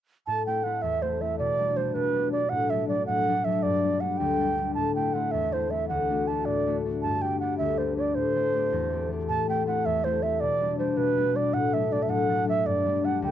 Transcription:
0.27 A2 A5
0.46 A3 C4 E4 G5
0.64 A3 C4 E4 F#5
0.82 E2 E5
1.02 A3 C4 E4 C5
1.21 A3 C4 E4 E5
1.39 B2 D5
1.59 G3 B3 D4
1.77 G3 B3 D4 C5
1.94 B2 B4
2.15 G3 B3 D4
2.32 G3 B3 D4 D5
2.49 A2 F#5
2.70 F#3 A3 D4 E5
2.88 F#3 A3 D4 D5
3.06 A2 F#5
3.28 F#3 A3 D4
3.45 F#3 A3 D4 E5
3.63 G2 D5
3.84 G3 B3 D4
4.00 G3 B3 D4 F#5
4.17 D2 G5
4.40 G3 B3 D4
4.58 G3 B3 D4
4.74 A2 A5
4.95 A3 C4 E4 G5
5.13 A3 C4 E4 F#5
5.31 E2 E5
5.53 A3 C4 E4 C5
5.71 A3 C4 E4 E5
5.89 D2 F#5
6.10 A3 D4 F#4
6.27 A3 D4 F#4 A5
6.45 A2 D5
6.67 A3 D4 F#4
6.85 A3 D4 F#4
7.02 G2 A5
7.22 B3 D4 G4 G5
7.40 B3 D4 G4 F#5
7.58 D2 E5
7.78 B3 D4 G4 C5
7.97 B3 D4 G4 D5
8.08 D5
8.15 A2 C5
8.35 A3 C4 G4
8.54 A3 C4 G4
8.72 E2
8.92 A3 C4 G4
9.09 A3 C4 G4
9.29 A2 A5
9.48 A3 C4 E4 G5
9.67 A3 C4 E4 F#5
9.86 E2 E5
10.04 A3 C4 E4 C5
10.23 A3 C4 E4 E5
10.40 B2 D5
10.60 G3 B3 D4
10.79 G3 B3 D4 C5
10.97 B2 B4
11.17 G3 B3 D4
11.35 G3 B3 D4 D5
11.53 A2 F#5
11.73 F#3 A3 D4 E5
11.91 F#3 A3 D4 D5
12.03 E5
12.09 A2 F#5
12.29 F#3 A3 D4
12.47 F#3 A3 D4 E5
12.66 G2 D5
12.85 G3 B3 D4
13.04 G3 B3 D4 F#5
13.22 D2 G5

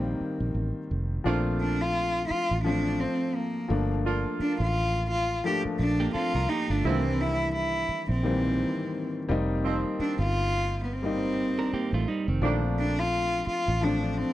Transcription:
Already playing: A#1 D#3 G3 A#3 C4
0.21 muted fingered electric bass stroke
0.40 A#1
0.55 A1
0.91 F1
1.24 A#1 F3 A3 A#3 C4 D4 F4
1.61 D4
1.81 F4
2.27 E4 F4
2.31 muted fingered electric bass stroke
2.51 A1
2.64 F3 A3 C4 D4 F4
3.00 C4
3.35 A#3
3.68 G1 F3 A3 A#3 D4
4.05 A#3 D4 F4
4.40 D4, muted fingered electric bass stroke
4.60 A1 F4
5.12 F4
5.44 F3 A3 A#3 D4 G4
5.65 muted fingered electric bass stroke
5.79 A#1 D4
6.00 A#3 G4
6.14 C4 F4 A4, muted fingered electric bass stroke
6.35 C2 D4 A#4
6.49 A#3 D#4 G4
6.70 G1 A3 D4 F4
6.84 C2 D#3 G3 A#3 C4 D4 E4
6.91 E3
7.21 E4
7.56 E4
7.89 muted fingered electric bass stroke
8.09 A#1 C4
8.23 D#3 G3 A#3 C4
8.29 E3
9.29 F1 G3 A#3 C4 D#4
9.63 D#3 F3 C4
9.99 D4, muted fingered electric bass stroke
10.19 G1 F4
10.84 B3
10.93 C4
11.02 G3 A#3 C4 D#4
11.59 D4 A#4
11.73 A#3 G4, muted fingered electric bass stroke
11.93 A1 A3 F4
12.08 G3 D#4
12.28 F1 D#3 C4
12.42 A#1 D3 F3 A3 A#3 C4 D4
12.79 D4
12.99 F4
13.47 F4, muted fingered electric bass stroke
13.68 A1
13.81 F3 A3 C4 D4
14.13 D4
14.17 C4

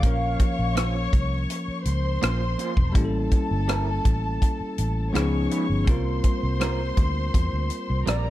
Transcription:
Already playing: F5
0.01 A#1 F3 A#3 C#5 C#6, kick, closed hi-hat
0.05 C#4 A#4
0.40 kick, closed hi-hat
0.59 A#1
0.75 A#3 C#4 F4 C5, cross-stick, closed hi-hat
1.13 C2, kick, closed hi-hat
1.50 closed hi-hat
1.68 muted fingered electric bass stroke
1.85 C#2 C5 C6, closed hi-hat
2.22 A#1 A#3 C#4 F4 C5, cross-stick, closed hi-hat
2.58 A#3 C#4 F4 C5, closed hi-hat
2.77 E1, kick
2.92 A1 G3 A#3 C#4 A4 A5, kick, closed hi-hat
2.97 E4 G4
3.05 A4
3.31 kick, closed hi-hat
3.51 G1
3.68 G3 C#4 E4 A#4, cross-stick, closed hi-hat
4.05 A1, kick, closed hi-hat
4.42 kick, closed hi-hat
4.61 muted fingered electric bass stroke
4.78 A1, closed hi-hat
5.13 C#2 F3 G#3 B3 C#4 D#4 F4 G#4 B4 C#5 C#6, cross-stick, closed hi-hat
5.50 G#3 D#4 F4 B4, closed hi-hat
5.70 G1
5.85 C2 G3 A#3 C4 C5 C6, kick, closed hi-hat
5.89 F4 A#4
6.24 kick, closed hi-hat
6.43 C2
6.60 G3 C4 F4 A#4, cross-stick, closed hi-hat
6.97 D2, kick, closed hi-hat
7.34 E2, kick, closed hi-hat
7.53 D2
7.70 closed hi-hat
7.90 C2
8.06 A#1 G3 C4 F4 A#4 D5 A#5, cross-stick, closed hi-hat

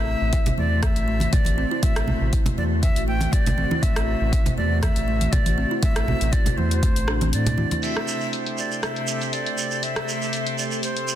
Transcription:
Already playing: A1 C3 A3 F#4 C5 E5
0.21 A1
0.33 E4, kick, closed hi-hat
0.46 closed hi-hat, low conga
0.58 E2 A3 D5, high conga
0.82 E5, kick, cross-stick, closed hi-hat, high conga
0.96 A1, closed hi-hat
1.08 A3
1.20 closed hi-hat, high conga
1.33 A1 D5, kick, closed hi-hat, low conga
1.45 closed hi-hat, high conga
1.58 C4
1.71 E4
1.83 A1 A3 E5, kick, closed hi-hat
1.96 cross-stick, closed hi-hat
2.08 low conga
2.21 A1
2.33 E4, kick, closed hi-hat
2.46 closed hi-hat, low conga
2.58 E2 A3 D5, high conga
2.82 A3 E5, kick, closed hi-hat
2.96 A1, closed hi-hat
3.07 A3 G5
3.21 closed hi-hat, high conga
3.32 A1 D5, kick, closed hi-hat
3.46 closed hi-hat, low conga
3.58 C4, high conga
3.71 E4, high conga
3.82 A1 A3 E5, kick, closed hi-hat
3.96 cross-stick, closed hi-hat
4.21 A1
4.33 E4, kick, closed hi-hat
4.46 closed hi-hat, low conga
4.57 E2 A3 D5, high conga
4.82 A3 E5, kick, cross-stick, closed hi-hat, high conga
4.96 A1, closed hi-hat
5.08 A3
5.21 closed hi-hat, high conga
5.32 A1 D5, kick, closed hi-hat, low conga
5.46 closed hi-hat, high conga
5.58 C4
5.71 E4
5.82 A1 A3 E5, kick, closed hi-hat
5.96 cross-stick, closed hi-hat
6.08 low conga
6.21 A1, closed hi-hat
6.32 E4 D5, kick, closed hi-hat
6.46 closed hi-hat, low conga
6.57 E2 A3 C5, high conga
6.71 closed hi-hat
6.83 A3, kick, closed hi-hat
6.96 A1, closed hi-hat
7.08 D4, cross-stick
7.21 C4, closed hi-hat, high conga
7.33 A2 D5, closed hi-hat
7.46 E4, closed hi-hat, low conga
7.58 E4, high conga
7.71 A3, closed hi-hat, high conga
7.83 C3 A3 C4 G4 A4 C5 E5, closed hi-hat, crash, shekere
7.97 cross-stick, closed hi-hat
8.08 shekere
8.21 shekere
8.33 closed hi-hat, shekere
8.46 closed hi-hat
8.58 D5, shekere
8.72 shekere
8.83 E5, cross-stick, closed hi-hat, shekere
8.96 closed hi-hat
9.07 shekere
9.21 closed hi-hat, shekere
9.33 D5, closed hi-hat, shekere
9.46 closed hi-hat
9.58 shekere
9.71 shekere
9.83 E5, closed hi-hat, shekere
9.96 cross-stick, closed hi-hat
10.09 shekere
10.22 shekere
10.33 closed hi-hat, shekere
10.47 closed hi-hat
10.58 D5, shekere
10.71 shekere
10.83 C5, closed hi-hat, shekere
10.97 closed hi-hat
11.08 shekere

